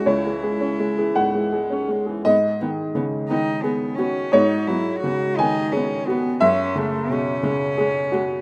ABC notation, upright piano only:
X:1
M:6/8
L:1/16
Q:3/8=58
K:G#phr
V:1 name="Upright piano"
c6 f6 | d12 | c6 g6 | e12 |]
V:2 name="Upright piano" clef=bass
[C,,G] G, G C G, G G,, G, G C G, G | G,,2 D,2 C,2 D,2 G2 F2 | G,,2 F,2 C,2 D,2 G2 F2 | F,,2 C,2 B,,2 C,2 G2 F2 |]